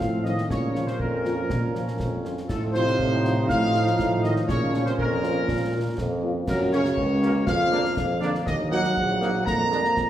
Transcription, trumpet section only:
0.00 0.25 F5 loud
0.25 0.48 D#5 medium
0.50 0.85 C#5 loud
0.87 0.99 C5 medium
1.01 2.21 A#4 medium
2.50 2.61 A4 loud
2.74 3.45 C5 loud
3.49 4.20 F5 loud
4.22 4.34 D#5 loud
4.47 4.83 C#5 loud
4.86 4.92 C5 loud
4.99 6.19 A#4 loud
6.47 6.59 A#4 loud
6.73 7.44 C#5 loud
7.47 8.18 F5 loud
8.21 8.32 D5 medium
8.46 8.57 D#5 loud
8.71 9.42 F#5 loud
9.45 10.10 A#5 loud

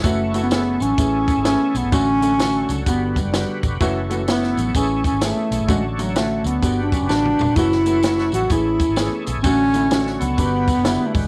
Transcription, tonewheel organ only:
0.03 1.90 E4 medium
0.03 0.97 F#4 medium
0.03 2.83 A4 medium
0.03 0.97 C#5 medium
0.98 1.91 G#4 medium
0.98 2.85 C#5 medium
1.91 3.78 D3 medium
1.91 4.71 F#4 medium
2.86 3.79 G4 medium
2.86 3.80 B4 medium
3.80 5.67 E4 medium
3.80 6.60 A4 medium
3.80 6.60 C#5 medium
4.73 5.67 G#4 medium
5.68 7.55 D4 medium
5.68 6.61 F#4 medium
6.62 8.49 F#4 medium
6.62 7.56 G4 medium
6.62 7.56 B4 medium
7.57 9.43 E4 medium
7.57 9.42 A4 medium
7.57 9.43 C#5 medium
8.51 9.43 G#4 medium
9.45 11.28 D3 medium
9.45 11.28 F#4 medium
9.45 10.38 A4 medium
9.45 10.38 C#5 medium
10.39 11.28 G4 medium
10.39 11.28 B4 medium

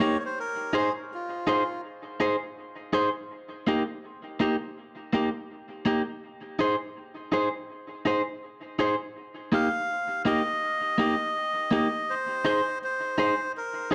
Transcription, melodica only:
0.00 0.18 C#5 loud
0.19 0.24 C#5 medium
0.25 0.39 C5 medium
0.40 0.76 A#4 medium
0.77 0.93 G#4 medium
1.14 1.81 F4 medium
9.54 10.22 F5 loud
10.27 12.15 D#5 loud
12.10 12.79 C5 loud
12.84 13.52 C5 medium
13.57 13.90 A#4 medium

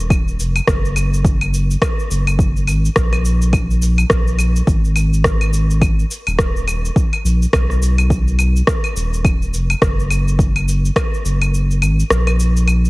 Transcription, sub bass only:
0.00 0.40 D#1 loud
0.39 0.60 F1 loud
0.68 1.76 F#1 loud
2.10 2.69 F#1 medium
2.68 2.89 G#1 medium
2.96 4.04 A#1 loud
4.10 4.61 A#1 medium
4.67 6.04 G#1 loud
6.27 6.90 D#1 loud
7.24 7.46 A#1 medium
7.53 8.62 B1 loud
8.96 9.55 D#1 loud
9.53 9.74 F1 medium
9.82 10.90 F#1 loud
11.25 11.83 F#1 medium
11.82 12.03 G#1 loud
12.10 12.90 A#1 loud

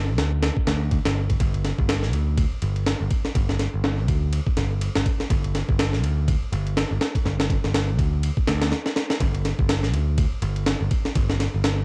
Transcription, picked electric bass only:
0.00 0.18 G1 medium
0.18 0.49 D2 medium
0.67 0.98 D2 medium
1.05 1.34 G1 loud
1.40 1.71 G1 loud
1.78 2.13 G1 medium
2.13 2.44 D2 medium
2.62 2.93 G1 medium
3.00 3.07 G1 medium
3.35 3.66 G1 loud
3.74 4.08 G1 medium
4.08 4.39 D2 medium
4.57 4.88 G1 medium
4.96 5.03 G1 medium
5.30 5.61 G1 loud
5.69 6.03 G1 medium
6.03 6.34 D2 medium
6.52 6.83 G1 medium
6.91 6.98 G1 medium
7.25 7.56 G1 loud
7.64 7.99 G1 medium
7.99 8.30 D2 medium
8.48 8.72 D2 medium
9.21 9.51 G1 loud
9.59 9.94 G1 medium
9.94 10.24 D2 medium
10.42 10.73 G1 medium
10.81 10.88 G1 medium
11.15 11.46 G1 loud
11.54 11.85 G1 medium

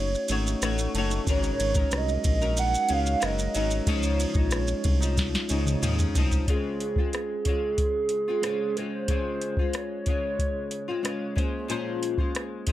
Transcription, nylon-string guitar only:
0.00 0.29 D#4 soft
0.00 0.30 F#4 medium
0.00 0.29 C#5 medium
0.29 0.62 A3 medium
0.29 0.62 D#4 medium
0.29 0.63 F#4 medium
0.29 0.63 C#5 medium
0.63 0.94 A3 medium
0.63 0.95 D#4 medium
0.63 0.95 F#4 medium
0.63 0.96 C#5 medium
0.95 1.27 A3 medium
0.95 1.28 D#4 medium
0.95 1.28 F#4 medium
0.95 1.29 C#5 medium
1.28 1.76 G#2 medium
1.28 1.77 C#3 medium
1.28 1.77 F#3 medium
1.28 1.77 C#4 loud
1.28 1.76 D#4 medium
1.28 1.75 A#4 loud
1.76 2.42 F#3 medium
1.76 2.42 C#4 medium
1.76 2.42 D#4 medium
1.76 2.40 A#4 medium
2.42 2.88 F#3 soft
2.42 2.89 C#4 medium
2.42 2.89 D#4 medium
2.42 2.90 A#4 medium
2.89 3.19 F#3 medium
2.89 3.19 C#4 medium
2.89 3.21 D#4 medium
2.89 3.22 A#4 medium
3.20 3.53 F#3 medium
3.20 3.54 C#4 medium
3.20 3.54 D#4 medium
3.20 3.55 A#4 medium
3.54 3.87 F#3 medium
3.54 3.87 C#4 medium
3.54 3.88 D#4 medium
3.54 3.88 A#4 medium
3.87 4.36 C#3 medium
3.87 4.36 F3 medium
3.87 4.34 D#4 loud
4.35 5.02 F3 medium
4.35 4.99 D#4 medium
5.00 5.50 F3 medium
5.00 5.49 D#4 medium
5.50 5.81 C#3 medium
5.50 5.82 F3 medium
5.50 5.83 D#4 medium
5.82 6.15 C#3 medium
5.82 6.15 F3 medium
5.82 6.16 C4 medium
5.82 6.16 D#4 medium
6.17 6.48 F3 medium
6.17 6.48 C4 medium
6.17 6.49 D#4 medium
6.48 6.97 C#3 medium
6.48 6.97 G#3 medium
6.48 6.97 C4 medium
6.48 6.97 F4 medium
6.98 7.45 G#3 soft
6.98 7.47 C4 soft
6.98 7.46 F4 soft
7.46 8.27 C#3 medium
7.46 8.30 G#3 medium
7.46 8.29 C4 medium
7.46 8.27 F4 medium
8.28 8.44 G#3 soft
8.28 8.44 C4 soft
8.28 8.44 F4 medium
8.43 8.76 C#3 medium
8.43 8.76 G#3 medium
8.43 8.77 C4 medium
8.43 8.77 F4 medium
8.77 9.08 C#3 soft
8.77 9.08 G#3 medium
8.77 9.10 C4 medium
8.77 9.09 F4 medium
9.09 9.57 C#3 medium
9.09 9.58 G#3 medium
9.09 9.58 C4 medium
9.09 9.58 F4 medium
9.59 10.06 G#3 soft
9.59 10.07 F4 medium
10.07 10.88 C#3 medium
10.07 10.90 G#3 medium
10.07 10.88 F4 medium
10.88 11.03 G#3 soft
10.88 11.05 C4 medium
10.88 11.04 F4 medium
11.03 11.36 C#3 medium
11.03 11.34 G#3 medium
11.03 11.36 F4 medium
11.36 11.69 G#3 medium
11.36 11.68 C#4 medium
11.36 11.69 F4 medium
11.36 11.70 C5 medium
11.68 12.18 A#2 medium
11.68 12.18 F3 medium
11.68 12.19 G#3 medium
11.68 12.18 C#4 medium
11.68 12.19 F4 medium
11.68 12.17 C5 loud
12.18 12.66 G#3 medium
12.18 12.66 C#4 soft
12.18 12.67 F4 medium
12.18 12.67 C5 medium
12.67 12.72 G#3 medium
12.67 12.72 C#4 medium
12.67 12.72 F4 medium

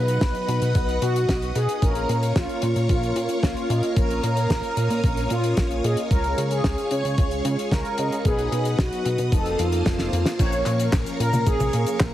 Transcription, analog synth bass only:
0.00 0.18 B2 medium
0.22 0.33 B1 loud
0.48 0.60 B2 loud
0.62 0.74 B2 medium
0.75 0.99 B1 loud
1.02 1.26 B2 medium
1.29 1.52 B1 medium
1.55 1.67 B2 medium
1.82 2.06 A#1 loud
2.09 2.33 A#2 medium
2.36 2.48 A#1 loud
2.63 2.74 A#2 loud
2.76 2.88 A#2 medium
2.89 3.13 A#1 loud
3.16 3.28 A#2 loud
3.43 3.55 A#1 medium
3.70 3.82 A#2 loud
3.97 4.20 A#1 loud
4.23 4.47 A#2 medium
4.50 4.62 A#1 loud
4.77 4.89 A#2 loud
4.90 5.02 A#2 medium
5.04 5.27 A#1 loud
5.31 5.54 A#2 medium
5.57 5.81 A#1 medium
5.84 5.96 A#2 medium
6.11 6.34 C#2 loud
6.38 6.61 C#3 medium
6.64 6.76 C#2 loud
6.91 7.03 C#3 loud
7.05 7.16 C#3 medium
7.18 7.42 C#2 loud
7.45 7.57 C#3 loud
7.72 7.83 C#2 medium
7.98 8.10 C#3 loud
8.25 8.49 B1 loud
8.52 8.76 B2 medium
8.79 8.90 B1 medium
9.05 9.17 B2 loud
9.19 9.31 B2 medium
9.32 9.56 F1 loud
9.59 9.83 F2 medium
9.86 10.09 F1 medium
10.13 10.24 F2 medium
10.39 10.63 A#1 loud
10.66 10.90 A#2 medium
10.93 11.05 A#1 loud
11.20 11.32 A#2 loud
11.33 11.45 A#2 medium
11.47 11.70 A#1 loud
11.73 11.85 A#2 loud
12.00 12.12 A#1 medium

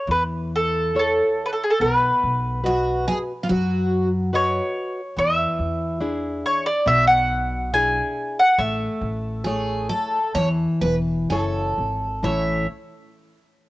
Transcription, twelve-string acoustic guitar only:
2.66 3.07 F#4 medium
3.08 3.17 G#4 medium
3.43 3.49 F4 medium
3.49 4.07 F#4 medium
9.44 9.89 G#4 medium
9.89 10.34 A4 medium
10.35 10.48 C#5 loud
10.81 10.95 B4 medium
11.30 12.20 A4 medium
12.24 12.66 C#5 medium

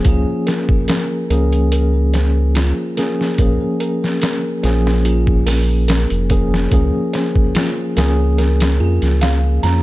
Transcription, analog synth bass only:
0.05 0.25 C#2 medium
1.30 2.73 C#2 medium
3.39 3.58 A#1 medium
4.64 6.07 A#1 medium
6.11 6.68 F1 medium
6.72 6.91 C#2 medium
7.97 8.79 C#2 medium
8.80 9.00 F2 medium
9.02 9.60 C#2 medium
9.64 9.83 F2 medium

